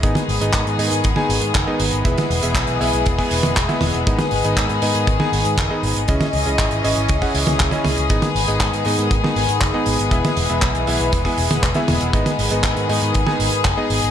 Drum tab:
HH |xxoxxxoxx-oxx-ox|xxoxxxoxxooxxxox|xxoxxxoxx-oxx-ox|xxoxxxoxxooxxxox|
CP |----x-------x---|----x-------x---|----x-------x---|----x-------x---|
T1 |-o-------o------|-o---------o-oo-|-o-------o------|-o---------o-oo-|
BD |o---o---o---o---|o---o---oo--o---|o---o---o---o---|o---o---oo--o---|

HH |xxoxxxoxx-oxx-ox|xxoxxxoxxooxxxox|xxoxxxoxx-oxx-ox|
CP |----x-------x---|----x-------x---|----x-------x---|
T1 |-o-------o------|-o---------o-oo-|-o-------o------|
BD |o---o---o---o---|o---o---oo--o---|o---o---o---o---|